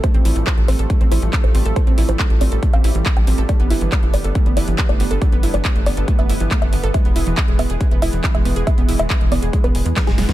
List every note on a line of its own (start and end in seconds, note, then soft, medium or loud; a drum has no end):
0.04 3.46 F3 medium
0.04 6.90 G3 medium
0.04 0.06 A3 loud
0.04 3.46 A3 medium
0.04 0.32 C5 loud
0.04 kick loud
0.04 closed hi-hat soft
0.14 0.22 A1 medium
0.14 0.18 C4 loud
0.14 closed hi-hat soft
0.25 0.32 A1 medium
0.25 0.29 E4 loud
0.25 open hi-hat loud
0.36 0.43 A1 medium
0.36 0.40 E3 medium
0.36 closed hi-hat soft
0.47 0.51 A3 medium
0.47 0.61 C5 medium
0.47 kick loud
0.47 clap loud
0.47 closed hi-hat soft
0.58 0.65 A1 medium
0.58 0.62 A4 medium
0.58 closed hi-hat soft
0.68 0.75 A1 loud
0.68 0.72 C4 medium
0.68 0.97 C5 medium
0.68 open hi-hat loud
0.79 0.86 A1 medium
0.79 0.85 A4 loud
0.79 closed hi-hat medium
0.90 0.92 A3 loud
0.90 kick loud
0.90 closed hi-hat soft
1.01 1.08 A1 medium
1.01 1.05 C4 loud
1.01 closed hi-hat soft
1.11 1.19 A1 loud
1.11 1.16 E4 loud
1.11 1.33 C5 medium
1.11 open hi-hat loud
1.22 1.29 A1 medium
1.22 1.26 E3 medium
1.22 closed hi-hat medium
1.33 1.37 A3 medium
1.33 kick loud
1.33 clap loud
1.33 closed hi-hat medium
1.44 1.51 A1 medium
1.44 1.48 A4 medium
1.44 1.65 C5 medium
1.44 closed hi-hat soft
1.55 1.62 A1 loud
1.55 1.59 C4 medium
1.55 open hi-hat loud
1.65 1.73 A1 medium
1.65 1.71 A4 loud
1.65 closed hi-hat medium
1.76 1.79 A3 loud
1.76 1.97 C5 medium
1.76 kick loud
1.76 closed hi-hat soft
1.87 1.94 A1 medium
1.87 1.91 C4 loud
1.87 closed hi-hat soft
1.98 2.05 A1 medium
1.98 2.02 E4 loud
1.98 open hi-hat loud
2.09 2.16 A1 medium
2.09 2.13 E3 medium
2.09 2.30 C5 medium
2.09 closed hi-hat soft
2.19 2.23 A3 medium
2.19 kick loud
2.19 clap loud
2.19 closed hi-hat soft
2.30 2.37 A1 medium
2.30 2.34 A4 medium
2.30 closed hi-hat soft
2.41 2.48 A1 loud
2.41 2.45 C4 medium
2.41 2.62 D5 medium
2.41 open hi-hat loud
2.52 2.59 A1 medium
2.52 2.58 A4 loud
2.52 closed hi-hat medium
2.63 2.65 A3 loud
2.63 kick loud
2.63 closed hi-hat soft
2.73 2.81 A1 medium
2.73 2.77 C4 loud
2.73 3.02 F5 loud
2.73 closed hi-hat soft
2.84 2.91 A1 loud
2.84 2.88 E4 loud
2.84 open hi-hat loud
2.95 3.02 A1 medium
2.95 2.99 E3 medium
2.95 closed hi-hat soft
3.06 3.10 A3 medium
3.06 kick loud
3.06 clap loud
3.06 closed hi-hat soft
3.17 3.24 A1 medium
3.17 3.21 A4 medium
3.17 3.38 G5 medium
3.17 closed hi-hat soft
3.27 3.34 A1 loud
3.27 3.31 C4 medium
3.27 open hi-hat loud
3.38 3.45 A1 medium
3.38 3.44 A4 loud
3.38 closed hi-hat soft
3.49 6.91 D3 medium
3.49 3.51 A3 loud
3.49 10.33 B3 medium
3.49 3.77 D5 loud
3.49 kick loud
3.49 closed hi-hat soft
3.60 3.67 G1 medium
3.60 3.64 B3 loud
3.60 closed hi-hat soft
3.70 3.78 G1 medium
3.70 3.75 E4 loud
3.70 open hi-hat loud
3.81 3.88 G1 medium
3.81 3.85 E3 medium
3.81 closed hi-hat soft
3.92 3.96 A3 medium
3.92 4.06 D5 medium
3.92 kick loud
3.92 clap loud
3.92 closed hi-hat medium
4.03 4.10 G1 medium
4.03 4.07 A3 loud
4.03 closed hi-hat soft
4.14 4.21 G1 loud
4.14 4.18 B3 medium
4.14 4.42 D5 medium
4.14 open hi-hat medium
4.24 4.32 G1 medium
4.24 4.30 A4 loud
4.24 closed hi-hat soft
4.35 4.38 A3 loud
4.35 kick loud
4.35 closed hi-hat soft
4.46 4.53 G1 medium
4.46 4.50 B3 loud
4.46 closed hi-hat soft
4.57 4.64 G1 loud
4.57 4.61 E4 loud
4.57 4.78 D5 medium
4.57 open hi-hat loud
4.68 4.75 G1 medium
4.68 4.72 E3 medium
4.68 closed hi-hat medium
4.78 4.82 A3 medium
4.78 kick loud
4.78 clap loud
4.78 closed hi-hat soft
4.89 4.96 G1 medium
4.89 4.93 A3 loud
4.89 5.10 D5 loud
4.89 closed hi-hat soft
5.00 5.07 G1 loud
5.00 5.04 B3 medium
5.00 open hi-hat medium
5.11 5.18 G1 medium
5.11 5.17 A4 loud
5.11 closed hi-hat medium
5.22 5.24 A3 loud
5.22 5.43 D5 medium
5.22 kick loud
5.22 closed hi-hat medium
5.32 5.40 G1 medium
5.32 5.36 B3 loud
5.32 closed hi-hat soft
5.43 5.50 G1 loud
5.43 5.47 E4 loud
5.43 open hi-hat loud
5.54 5.61 G1 medium
5.54 5.58 E3 medium
5.54 5.75 D5 loud
5.54 closed hi-hat soft
5.65 5.69 A3 medium
5.65 kick loud
5.65 clap loud
5.65 closed hi-hat medium
5.76 5.83 G1 medium
5.76 5.80 A3 loud
5.76 closed hi-hat soft
5.86 5.93 G1 loud
5.86 5.90 B3 medium
5.86 6.08 D5 medium
5.86 open hi-hat medium
5.97 6.04 G1 medium
5.97 6.03 A4 loud
5.97 closed hi-hat medium
6.08 6.10 A3 loud
6.08 kick loud
6.08 closed hi-hat medium
6.19 6.26 G1 medium
6.19 6.23 B3 loud
6.19 6.47 E5 loud
6.19 closed hi-hat soft
6.30 6.37 G1 loud
6.30 6.34 E4 loud
6.30 open hi-hat loud
6.40 6.47 G1 medium
6.40 6.44 E3 medium
6.40 closed hi-hat medium
6.51 6.55 A3 medium
6.51 kick loud
6.51 clap loud
6.51 closed hi-hat medium
6.62 6.69 G1 medium
6.62 6.66 A3 loud
6.62 6.83 E5 medium
6.62 closed hi-hat soft
6.73 6.80 G1 loud
6.73 6.77 B3 medium
6.73 open hi-hat medium
6.83 6.91 G1 medium
6.83 6.89 A4 loud
6.83 closed hi-hat medium
6.94 10.33 E3 medium
6.94 6.97 G#3 loud
6.94 10.33 G#3 medium
6.94 7.23 E5 medium
6.94 kick loud
6.94 closed hi-hat medium
7.05 7.12 E1 medium
7.05 7.09 B3 loud
7.05 closed hi-hat soft
7.16 7.23 E1 loud
7.16 7.20 E4 loud
7.16 open hi-hat loud
7.27 7.34 E1 medium
7.27 7.31 E3 medium
7.27 closed hi-hat medium
7.37 7.41 G#3 medium
7.37 7.52 E5 medium
7.37 kick loud
7.37 clap loud
7.37 closed hi-hat medium
7.48 7.55 E1 medium
7.48 7.52 G#3 loud
7.48 closed hi-hat soft
7.59 7.66 E1 loud
7.59 7.63 B3 medium
7.59 7.87 E5 medium
7.59 open hi-hat medium
7.70 7.77 E1 medium
7.70 7.76 G#4 loud
7.70 closed hi-hat medium
7.81 7.83 G#3 loud
7.81 kick loud
7.81 closed hi-hat medium
7.91 7.99 E1 medium
7.91 7.95 B3 loud
7.91 closed hi-hat soft
8.02 8.09 E1 loud
8.02 8.06 E4 loud
8.02 8.23 E5 medium
8.02 open hi-hat loud
8.13 8.20 E1 medium
8.13 8.17 E3 medium
8.13 closed hi-hat medium
8.24 8.28 G#3 medium
8.24 kick loud
8.24 clap loud
8.24 closed hi-hat medium
8.34 8.42 E1 medium
8.34 8.39 G#3 loud
8.34 8.56 E5 medium
8.34 closed hi-hat soft
8.45 8.53 E1 loud
8.45 8.49 B3 medium
8.45 open hi-hat medium
8.56 8.63 E1 medium
8.56 8.62 G#4 loud
8.56 closed hi-hat medium
8.67 8.69 G#3 loud
8.67 8.88 E5 medium
8.67 kick loud
8.67 closed hi-hat medium
8.78 8.85 E1 medium
8.78 8.82 B3 loud
8.78 closed hi-hat soft
8.89 8.96 E1 loud
8.89 8.93 E4 loud
8.89 open hi-hat loud
8.99 9.06 E1 medium
8.99 9.03 E3 medium
8.99 9.21 E5 medium
8.99 closed hi-hat medium
9.10 9.14 G#3 medium
9.10 kick loud
9.10 clap loud
9.10 closed hi-hat medium
9.21 9.28 E1 medium
9.21 9.25 G#3 loud
9.21 closed hi-hat soft
9.32 9.39 E1 loud
9.32 9.36 B3 medium
9.32 9.53 D5 loud
9.32 open hi-hat medium
9.42 9.50 E1 medium
9.42 9.48 G#4 loud
9.42 closed hi-hat medium
9.53 9.56 G#3 loud
9.53 kick loud
9.53 closed hi-hat medium
9.64 9.71 E1 medium
9.64 9.68 B3 loud
9.64 9.92 B4 loud
9.64 closed hi-hat soft
9.75 9.82 E1 loud
9.75 9.77 G#3 medium
9.75 open hi-hat loud
9.86 9.93 E2 medium
9.86 9.90 G#3 medium
9.86 closed hi-hat medium
9.96 10.00 G#3 medium
9.96 kick loud
9.96 snare medium
9.96 clap loud
9.96 closed hi-hat medium
10.07 10.14 E1 medium
10.07 10.13 G#2 loud
10.07 10.28 G#4 medium
10.07 snare medium
10.07 closed hi-hat soft
10.18 10.25 E1 loud
10.18 10.22 G#3 medium
10.18 snare medium
10.18 open hi-hat medium
10.29 10.33 E2 medium
10.29 10.33 G#2 medium
10.29 snare medium
10.29 closed hi-hat medium